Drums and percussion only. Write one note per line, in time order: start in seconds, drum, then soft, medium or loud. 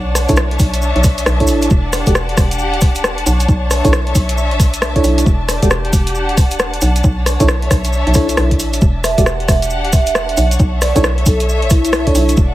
0.15 cross-stick medium
0.15 open hi-hat loud
0.15 maracas medium
0.29 kick medium
0.29 closed hi-hat medium
0.29 maracas medium
0.36 cross-stick loud
0.36 maracas soft
0.51 closed hi-hat soft
0.59 kick loud
0.59 open hi-hat medium
0.59 maracas loud
0.74 closed hi-hat medium
0.74 maracas soft
0.82 maracas soft
0.96 closed hi-hat soft
1.04 kick loud
1.04 cross-stick soft
1.04 open hi-hat medium
1.04 maracas medium
1.18 closed hi-hat medium
1.18 maracas medium
1.26 cross-stick loud
1.26 open hi-hat medium
1.26 maracas soft
1.40 kick medium
1.40 closed hi-hat soft
1.47 open hi-hat medium
1.47 maracas loud
1.62 closed hi-hat medium
1.62 maracas medium
1.70 kick loud
1.70 maracas soft
1.93 cross-stick medium
1.93 open hi-hat loud
1.93 maracas medium
2.06 kick medium
2.06 closed hi-hat medium
2.06 maracas soft
2.15 cross-stick loud
2.15 maracas soft
2.29 closed hi-hat soft
2.37 kick loud
2.37 cross-stick medium
2.37 open hi-hat loud
2.37 maracas medium
2.51 closed hi-hat medium
2.51 maracas medium
2.59 maracas soft
2.74 closed hi-hat soft
2.81 kick loud
2.81 cross-stick soft
2.81 open hi-hat medium
2.81 maracas medium
2.95 closed hi-hat medium
2.95 maracas soft
3.04 cross-stick loud
3.04 maracas soft
3.18 closed hi-hat soft
3.26 open hi-hat loud
3.26 maracas medium
3.40 closed hi-hat medium
3.40 maracas medium
3.49 kick loud
3.49 maracas soft
3.71 cross-stick medium
3.71 open hi-hat loud
3.71 maracas medium
3.85 kick medium
3.85 closed hi-hat medium
3.85 maracas soft
3.93 cross-stick loud
3.93 maracas soft
4.07 closed hi-hat soft
4.15 kick loud
4.15 open hi-hat loud
4.15 maracas medium
4.29 closed hi-hat medium
4.29 maracas soft
4.38 maracas soft
4.51 closed hi-hat soft
4.60 kick loud
4.60 cross-stick soft
4.60 open hi-hat loud
4.60 maracas medium
4.73 closed hi-hat medium
4.73 maracas medium
4.82 cross-stick loud
4.82 open hi-hat medium
4.82 maracas soft
4.96 kick medium
4.96 closed hi-hat medium
5.04 open hi-hat loud
5.04 maracas medium
5.18 closed hi-hat medium
5.18 maracas soft
5.26 kick loud
5.26 maracas soft
5.49 cross-stick medium
5.49 open hi-hat loud
5.49 maracas medium
5.62 kick medium
5.62 closed hi-hat medium
5.62 maracas soft
5.70 cross-stick loud
5.70 maracas soft
5.85 closed hi-hat soft
5.93 kick loud
5.93 open hi-hat loud
5.93 maracas medium
6.07 closed hi-hat medium
6.07 maracas soft
6.15 maracas soft
6.29 closed hi-hat soft
6.37 kick loud
6.37 cross-stick soft
6.37 open hi-hat loud
6.37 maracas medium
6.51 closed hi-hat medium
6.51 maracas soft
6.59 cross-stick loud
6.59 maracas soft
6.74 closed hi-hat medium
6.81 open hi-hat loud
6.81 maracas medium
6.96 closed hi-hat medium
6.96 maracas soft
7.04 kick loud
7.04 maracas soft
7.26 cross-stick medium
7.26 open hi-hat loud
7.26 maracas medium
7.40 kick medium
7.40 closed hi-hat medium
7.40 maracas soft
7.48 cross-stick loud
7.48 maracas soft
7.62 closed hi-hat soft
7.71 kick loud
7.71 cross-stick medium
7.71 open hi-hat loud
7.71 maracas medium
7.84 closed hi-hat medium
7.84 maracas soft
7.93 maracas soft
8.07 closed hi-hat soft
8.14 kick loud
8.14 cross-stick soft
8.14 open hi-hat loud
8.14 maracas medium
8.29 closed hi-hat medium
8.29 maracas medium
8.37 cross-stick loud
8.37 open hi-hat medium
8.37 maracas soft
8.51 kick medium
8.51 closed hi-hat medium
8.60 open hi-hat loud
8.60 maracas medium
8.73 closed hi-hat medium
8.73 maracas soft
8.81 kick loud
8.81 maracas soft
9.04 cross-stick medium
9.04 open hi-hat loud
9.04 maracas medium
9.18 kick medium
9.18 closed hi-hat medium
9.18 maracas medium
9.26 cross-stick loud
9.26 maracas soft
9.40 closed hi-hat soft
9.48 kick loud
9.48 cross-stick medium
9.48 open hi-hat loud
9.48 maracas medium
9.62 closed hi-hat medium
9.62 maracas soft
9.70 maracas soft
9.85 closed hi-hat soft
9.93 kick loud
9.93 cross-stick soft
9.93 open hi-hat loud
9.93 maracas loud
10.06 closed hi-hat medium
10.06 maracas medium
10.15 cross-stick loud
10.15 maracas soft
10.29 closed hi-hat soft
10.37 open hi-hat loud
10.37 maracas medium
10.51 closed hi-hat medium
10.51 maracas medium
10.59 kick loud
10.59 maracas soft
10.82 cross-stick medium
10.82 open hi-hat loud
10.82 maracas medium
10.96 kick medium
10.96 closed hi-hat medium
10.96 maracas medium
11.04 cross-stick loud
11.04 maracas soft
11.18 closed hi-hat soft
11.26 kick loud
11.26 open hi-hat loud
11.26 maracas medium
11.40 closed hi-hat medium
11.40 maracas medium
11.49 maracas soft
11.62 closed hi-hat soft
11.70 kick loud
11.70 cross-stick soft
11.70 open hi-hat loud
11.70 maracas medium
11.85 closed hi-hat medium
11.85 maracas soft
11.93 cross-stick loud
11.93 open hi-hat medium
11.93 maracas soft
12.07 kick medium
12.07 closed hi-hat soft
12.15 open hi-hat loud
12.15 maracas medium
12.29 closed hi-hat medium
12.29 maracas medium
12.37 kick loud
12.37 maracas soft